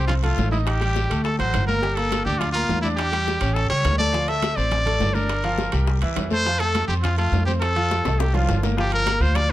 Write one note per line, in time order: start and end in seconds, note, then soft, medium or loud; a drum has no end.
0.00 0.35 C2 medium
0.00 0.18 C4 medium
0.00 0.18 C5 medium
0.00 0.18 C6 medium
0.07 0.14 F4 medium
0.07 high bongo medium
0.07 high conga soft
0.07 low conga medium
0.07 high timbale medium
0.07 long guiro medium
0.23 0.47 A3 medium
0.23 0.50 F4 medium
0.23 0.47 A4 medium
0.23 0.47 A5 medium
0.23 high bongo soft
0.23 high conga soft
0.23 low conga medium
0.23 high timbale medium
0.38 1.05 A1 loud
0.38 high bongo soft
0.38 low bongo medium
0.38 high conga medium
0.38 low timbale medium
0.38 short guiro medium
0.51 0.76 D#4 medium
0.51 0.58 E4 medium
0.51 0.76 D#5 medium
0.51 0.76 D#6 medium
0.51 high bongo soft
0.51 high conga medium
0.51 short guiro medium
0.66 1.21 G4 loud
0.66 high bongo medium
0.66 high conga soft
0.66 high timbale medium
0.66 long guiro medium
0.81 1.05 G3 medium
0.81 1.05 G4 medium
0.81 1.05 G5 medium
0.81 high bongo soft
0.81 high conga soft
0.81 high timbale medium
0.96 high bongo medium
0.96 high conga medium
0.96 low timbale medium
0.96 short guiro medium
1.10 1.37 D2 medium
1.10 1.34 A3 medium
1.10 1.34 A4 medium
1.10 1.34 A5 medium
1.10 high conga soft
1.10 high timbale medium
1.10 short guiro medium
1.24 1.38 A4 medium
1.24 high bongo medium
1.24 high conga soft
1.24 long guiro medium
1.39 1.53 A1 medium
1.39 1.63 F#3 medium
1.39 1.63 F#4 medium
1.39 1.66 C5 loud
1.39 1.63 F#5 medium
1.39 high bongo soft
1.39 high conga soft
1.39 high timbale medium
1.54 2.21 G1 medium
1.54 high bongo soft
1.54 low bongo medium
1.54 high conga soft
1.54 high timbale medium
1.54 low timbale medium
1.54 short guiro medium
1.67 1.80 A#3 medium
1.67 1.97 A#4 loud
1.67 1.80 A#4 medium
1.67 1.80 A#5 medium
1.67 high bongo soft
1.67 high conga medium
1.67 short guiro medium
1.82 1.94 G3 medium
1.82 1.95 G4 medium
1.82 1.95 G5 medium
1.82 high bongo medium
1.82 long guiro medium
1.95 2.21 A#3 medium
1.95 2.24 A4 loud
1.95 2.21 A#4 medium
1.95 2.21 A#5 medium
1.95 high bongo soft
1.95 high conga soft
1.95 high timbale medium
2.12 high bongo medium
2.12 high conga medium
2.12 high timbale medium
2.12 low timbale medium
2.12 short guiro medium
2.25 2.66 D2 medium
2.25 2.50 D4 medium
2.25 2.40 G4 medium
2.25 2.50 D5 medium
2.25 2.50 D6 medium
2.25 high conga soft
2.25 short guiro medium
2.39 2.51 F4 medium
2.39 high bongo medium
2.39 high conga soft
2.39 low conga medium
2.39 high timbale medium
2.39 long guiro medium
2.52 2.79 A#3 medium
2.52 2.80 F4 medium
2.52 2.79 A#4 medium
2.52 2.79 A#5 medium
2.52 high bongo soft
2.52 high conga soft
2.52 high timbale medium
2.69 3.36 E2 medium
2.69 high bongo soft
2.69 low bongo medium
2.69 high conga medium
2.69 low timbale medium
2.69 short guiro medium
2.82 3.07 D4 medium
2.82 2.89 E4 medium
2.82 3.08 D5 medium
2.82 3.08 D6 medium
2.82 high bongo soft
2.82 high conga medium
2.82 short guiro medium
2.96 3.56 G4 loud
2.96 high bongo medium
2.96 high conga soft
2.96 high timbale medium
2.96 long guiro medium
3.12 3.36 G3 medium
3.12 3.36 G4 medium
3.12 3.37 G5 medium
3.12 high bongo soft
3.12 high conga soft
3.12 high timbale medium
3.27 high bongo medium
3.27 high conga medium
3.27 low timbale medium
3.27 short guiro medium
3.41 3.69 A1 medium
3.41 3.66 C#4 medium
3.41 3.66 C#5 medium
3.41 3.66 C#6 medium
3.41 high conga soft
3.41 high timbale medium
3.41 short guiro medium
3.54 3.69 A4 loud
3.54 high bongo medium
3.54 high conga soft
3.54 long guiro medium
3.70 3.84 C#2 medium
3.70 3.94 G3 medium
3.70 3.94 G4 medium
3.70 3.97 C#5 loud
3.70 3.94 G5 medium
3.70 high bongo soft
3.70 high conga soft
3.70 high timbale medium
3.85 4.52 D2 medium
3.85 high bongo soft
3.85 low bongo medium
3.85 high conga soft
3.85 high timbale medium
3.85 low timbale medium
3.85 short guiro medium
3.98 4.11 A3 medium
3.98 4.11 A4 medium
3.98 4.30 D5 loud
3.98 4.12 A5 medium
3.98 high bongo soft
3.98 high conga medium
3.98 short guiro medium
4.12 4.25 F3 medium
4.12 4.25 F4 medium
4.12 4.25 F5 medium
4.12 high bongo medium
4.12 high conga soft
4.12 long guiro medium
4.28 4.52 A3 medium
4.28 4.52 A4 medium
4.28 4.58 E5 loud
4.28 4.52 A5 medium
4.28 high bongo soft
4.28 high conga soft
4.28 high timbale medium
4.42 high bongo medium
4.42 high conga medium
4.42 high timbale loud
4.42 low timbale medium
4.42 short guiro medium
4.56 4.98 A1 loud
4.56 4.81 C4 medium
4.56 4.81 C5 medium
4.56 5.16 D5 loud
4.56 4.81 C6 medium
4.56 high conga soft
4.56 short guiro medium
4.71 high bongo medium
4.71 high conga soft
4.71 low conga medium
4.71 high timbale medium
4.71 long guiro medium
4.86 5.10 A3 medium
4.86 5.10 A4 medium
4.86 5.10 A5 medium
4.86 high bongo soft
4.86 high conga soft
4.86 low conga medium
4.86 high timbale medium
5.00 5.68 G1 medium
5.00 high bongo soft
5.00 low bongo medium
5.00 high conga medium
5.00 low timbale medium
5.00 short guiro medium
5.14 5.39 D4 medium
5.14 6.02 A#4 medium
5.14 5.39 D5 medium
5.14 5.39 D6 medium
5.14 high bongo soft
5.14 high conga medium
5.14 short guiro medium
5.29 high bongo medium
5.29 high conga soft
5.29 high timbale medium
5.29 long guiro medium
5.44 5.68 F3 medium
5.44 5.68 F4 medium
5.44 5.68 F5 medium
5.44 high bongo soft
5.44 high conga soft
5.44 high timbale medium
5.58 high bongo medium
5.58 high conga medium
5.58 low timbale medium
5.58 short guiro medium
5.72 6.00 C2 loud
5.72 5.97 G3 medium
5.72 5.97 G4 medium
5.72 5.97 G5 medium
5.72 high conga soft
5.72 high timbale medium
5.72 short guiro medium
5.87 high bongo medium
5.87 high conga soft
5.87 long guiro medium
6.02 6.16 E2 medium
6.02 6.26 E3 medium
6.02 6.26 E4 medium
6.02 6.26 E5 medium
6.02 high bongo soft
6.02 high conga soft
6.02 high timbale medium
6.16 6.84 F2 medium
6.16 high bongo soft
6.16 low bongo medium
6.16 high conga soft
6.16 high timbale medium
6.16 low timbale medium
6.16 short guiro medium
6.30 6.43 A3 medium
6.30 6.43 A4 medium
6.30 6.61 C5 loud
6.30 6.43 A5 medium
6.30 high bongo soft
6.30 high conga medium
6.30 short guiro medium
6.45 6.58 F3 medium
6.45 6.58 F4 medium
6.45 6.58 F5 medium
6.45 high bongo medium
6.45 high conga soft
6.45 long guiro medium
6.59 6.84 A3 medium
6.59 6.87 A4 loud
6.59 6.84 A4 medium
6.59 6.84 A5 medium
6.59 high bongo soft
6.59 high conga soft
6.59 high timbale medium
6.75 high bongo medium
6.75 high conga medium
6.75 high timbale medium
6.75 low timbale medium
6.75 short guiro medium
6.88 7.29 F2 medium
6.88 7.13 C4 medium
6.88 6.95 G4 medium
6.88 7.13 C5 medium
6.88 7.13 C6 medium
6.88 high conga soft
6.88 short guiro medium
7.02 7.16 F4 medium
7.02 high bongo medium
7.02 high conga soft
7.02 low conga medium
7.02 high timbale medium
7.02 long guiro medium
7.17 7.42 A3 medium
7.17 7.45 F4 medium
7.17 7.42 A4 medium
7.17 7.42 A5 medium
7.17 high bongo soft
7.17 high conga soft
7.17 high timbale medium
7.32 7.99 F2 loud
7.32 high bongo soft
7.32 low bongo medium
7.32 high conga medium
7.32 low timbale medium
7.32 short guiro medium
7.46 7.71 C4 medium
7.46 7.53 G4 medium
7.46 7.71 C5 medium
7.46 7.71 C6 medium
7.46 high bongo soft
7.46 high conga medium
7.46 short guiro medium
7.61 8.21 A4 loud
7.61 high bongo medium
7.61 high conga soft
7.61 high timbale medium
7.61 long guiro medium
7.76 8.00 F3 medium
7.76 8.00 F4 medium
7.76 8.00 F5 medium
7.76 high bongo soft
7.76 high conga soft
7.76 high timbale medium
7.91 high bongo medium
7.91 high conga medium
7.91 low timbale medium
7.91 short guiro medium
8.04 8.46 C2 medium
8.04 8.29 A3 medium
8.04 8.29 A4 medium
8.04 8.29 A5 medium
8.04 high bongo loud
8.04 high conga soft
8.04 high timbale medium
8.04 short guiro medium
8.19 8.36 G4 medium
8.19 high bongo loud
8.19 high conga soft
8.19 high timbale medium
8.19 long guiro medium
8.34 8.58 F3 medium
8.34 8.58 F4 medium
8.34 8.63 F4 medium
8.34 8.58 F5 medium
8.34 low bongo medium
8.34 high conga soft
8.34 low timbale loud
8.49 9.16 G1 medium
8.49 low bongo medium
8.49 high conga soft
8.49 low timbale medium
8.49 short guiro medium
8.63 8.75 A#3 medium
8.63 8.75 A#4 medium
8.63 8.75 A#5 medium
8.63 low bongo medium
8.63 high conga medium
8.63 low timbale medium
8.63 short guiro medium
8.77 9.01 F3 medium
8.77 9.01 F4 medium
8.77 8.92 G4 loud
8.77 9.02 F5 medium
8.77 high bongo medium
8.77 high conga soft
8.77 long guiro medium
8.92 9.23 A#4 loud
8.92 high bongo soft
8.92 high conga soft
8.92 high timbale medium
9.06 9.18 A#3 medium
9.06 9.18 A#4 medium
9.06 9.19 A#5 medium
9.06 high bongo medium
9.06 high conga medium
9.06 high timbale loud
9.06 low timbale medium
9.06 short guiro medium
9.20 9.52 D2 loud
9.20 9.45 F4 medium
9.20 9.37 C5 loud
9.20 9.45 F5 medium
9.20 9.45 F6 medium
9.20 high bongo soft
9.20 short guiro medium
9.35 9.52 D5 loud
9.35 high bongo medium
9.35 high conga soft
9.35 low conga medium
9.35 high timbale medium
9.35 long guiro medium